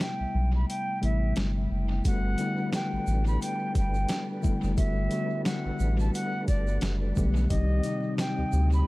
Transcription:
Already playing: C3 G3 A3 B3 E4
0.00 G5, snare, closed hi-hat
0.20 B1
0.34 B1
0.55 B5
0.68 G5, closed hi-hat
1.01 A1 C3 G3 A3 B3 E4 E5, closed hi-hat
1.36 G1, snare, closed hi-hat
1.71 F#1
2.04 G1 D3 G3 A3 B3 D4 F#4 A4 B4 F#5, kick, closed hi-hat, shaker
2.38 D3 G3 A3 B3 E4, closed hi-hat, shaker
2.73 G5, snare, closed hi-hat, shaker
2.93 A1
3.07 A1, shaker
3.27 B5, shaker
3.42 G5, closed hi-hat, shaker
3.75 G1 G5, kick, closed hi-hat, shaker
3.94 shaker
4.09 snare, closed hi-hat, shaker
4.42 D3 G3 A3 B3 E4, kick, shaker
4.45 shaker
4.63 F#1, shaker
4.76 G1 D3 G3 A3 B3 F#4 E5, kick, closed hi-hat, shaker
5.11 D3 G3 A3 B3 F#4, closed hi-hat, shaker
5.45 F#5, snare, closed hi-hat, shaker
5.65 A1
5.79 A1, shaker
6.00 A5, shaker
6.14 F#5, closed hi-hat, shaker
6.47 G1 D5, kick, closed hi-hat, shaker
6.67 shaker
6.81 F#1, snare, closed hi-hat, shaker
7.16 B1 D3 G3 A3, kick, shaker
7.17 B3 G4, shaker
7.36 shaker
7.49 C2 C3 D#3 G3 C4 D#4 G4 D#5, kick, closed hi-hat, shaker
7.83 C3 G3 C4 D#4 G4, closed hi-hat, shaker
8.18 G5, snare, closed hi-hat, shaker
8.38 D2
8.52 D2, shaker
8.72 B5, shaker

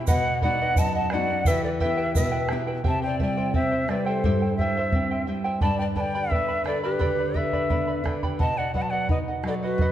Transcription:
0.07 B2 B4 D#5 F#5, bombo low, shaker
0.24 D#5 F#5
0.42 B3 D#4 F#4 B4 D5 D#5 F#5, bombo low
0.61 B4 D#5 F#5
0.76 F#2 B4 D#5 F#5 A5, bombo low, shaker
0.94 D#5 F#5 A5
1.10 B3 D#4 B4 D5 D#5 F#5, bombo rim
1.15 F#4
1.30 D#5 F#5
1.45 E4 G4 B4 E5 G5, bombo low, shaker
1.50 E3
1.62 E4 A4 B4 D5 G5
1.80 B3 E4 G4 B4 E5 G5, bombo low
1.85 E4 G4
1.97 E4 G4 B4 E5 G5
2.15 E4 B4 E5 G5, bombo low, shaker
2.19 B2
2.32 E4 B4 G5
2.49 B3 E4 B4 E5 G5, bombo rim
2.53 G4
2.67 E4 B4 G5
2.84 C3 E4 G4 C5 E5 G5 A5, bombo low
3.02 E4 C5 D5 G5
3.19 G3 E4 C5 D5 E5 G5, bombo low
3.37 E4 G4 C5 E5 G5
3.54 C4 E4 C5 E5 G5, bombo low
3.72 E4 C5 G5
3.88 G3 E4 B4 C5 D5 E5 G5, bombo rim
4.05 E4 G4 A4 C5 E5 G5
4.24 G2 E4 G4 C5 E5 G5, bombo low
4.42 E4 C5 G5
4.56 G3 C5 E5, bombo low
4.61 E4 C5 E5 G5
4.77 E4 G4 C5 E5 G5
4.92 C4 E4 C5 E5 G5, bombo low
5.11 E4 C5 G5
5.27 G3 E4 C5 E5 G5
5.44 E4 G4 C5 E5 G5
5.61 G2 G4 B4 D5 G5 A5 B5, bombo low
5.78 B4 D5 G5 B5
5.96 D3 B4 D5 G5 A5 B5, bombo low
6.00 G5
6.15 G4 B4 D5 G5 B5
6.30 B3 B4 D5 E5 G5 B5, bombo low
6.48 B4 D5 B5
6.64 D3 A4 B4 D5 G5 B5, bombo rim
6.82 G4 B4 D5 G5 B5
6.99 D3 G4 B4 D5 G5 B5, bombo low
7.19 B4 D5 B5
7.34 G4 B4 D5 E5 G5 B5, bombo low
7.53 G4 B4 D5 G5 B5, bombo low
7.70 B3 B4 D5 G5 B5, bombo low
7.87 B4 D5 B5
8.04 D3 B4 D5 G5 B5, bombo rim, bombo low
8.23 G4 B4 D5 G5 B5, bombo low
8.39 B2 B4 D#5 F#5 A5, bombo low
8.57 D5 D#5 F#5
8.74 F#3 B4 D5 D#5 F#5, bombo low
8.79 F#5 A5
8.89 D5 D#5 F#5
8.93 B4
9.09 D#4 B4 D#5 F#5, bombo low
9.28 D#5 F#5
9.43 F#3 B4 D#5, bombo rim
9.47 A4 D5 F#5
9.63 F#4 B4 D#5 F#5
9.78 F#2 B4 D#5, bombo low
9.82 F#5

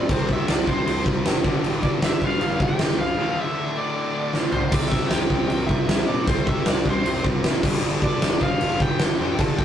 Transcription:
Already playing: G3 C4 G4 D5
0.09 C2 C3 G3 C4 C5, kick, crash
0.29 C3 G3 C4 E5, kick
0.48 C2 C3 G3 C4 D5, snare, crash
0.67 C2 C3 G3 C4 C5, kick
0.86 C2 C3 G3 C4, crash
1.05 C2 C3 G3 C4, kick
1.25 F#1 C3 G3 C4, snare, crash
1.43 G1 G2 D3 G3 D4 A4, kick
1.64 G1 G2 D3 G3, crash
1.83 G2 D3 G3 D5, kick
2.02 G1 G2 D3 G3 E5, snare, crash
2.21 G1 G2 D3 G3 F5, kick
2.40 G1 G2 D3 G3, crash
2.60 G1 G2 D3 G3 G5, kick
2.78 G1 G2 D3 G3, snare, crash
2.98 C2 G2 D3 G3 F5
3.18 D2 A2 D3 E5
3.36 D2 A2 D3
3.41 E5
3.56 D2 A2 D3
3.76 D2 A2 D3 D5
3.95 D2 A2 D3
4.15 D2 A2 D3
4.33 D2 A2 D3, snare
4.52 D2 A2 D3 C5, floor tom
4.71 C2 C3 G3 C4 G4 D5, kick, crash
4.88 C3 E5, kick
4.92 G3 C4
5.09 C2 C3 G3 C4 G5, snare, crash
5.30 C2 C3 G3 C4, kick
5.49 C2 C3 G3 C4 G5, crash
5.67 C2 C3 G3 C4 E5, kick
5.88 C2 C3 G3 C4, snare, crash
6.07 A#2 C3 G3 C4 D5
6.27 C2 C3 G3 C4 C5, kick, crash
6.46 C3 G3 C4 E5, kick
6.66 C2 C3 G3 C4 D5, snare, crash
6.85 C2 C3 G3 C4 C5, kick
7.05 C2 C3 G3 C4, crash
7.24 C2 C3 G3 C4, kick
7.43 F#1 C3 G3 C4, snare, crash
7.63 G1 G2 D3 G3 D4 A4, kick, crash
7.81 G1 G2 D3 G3, crash
8.02 G2 D3 G3 D5, kick
8.21 G1 G2 D3 G3, snare, crash
8.41 G1 G2 D3 G3 F5, kick
8.60 G1 G2 D3 G3, crash
8.80 G1 G2 D3 G3 G5, kick
8.99 G1 G2 D3 G3, snare, crash
9.19 F2 G2 D3 G3
9.38 G1 G2 D3 G3 A5, kick, crash
9.58 G2 D3 G3 G5, kick

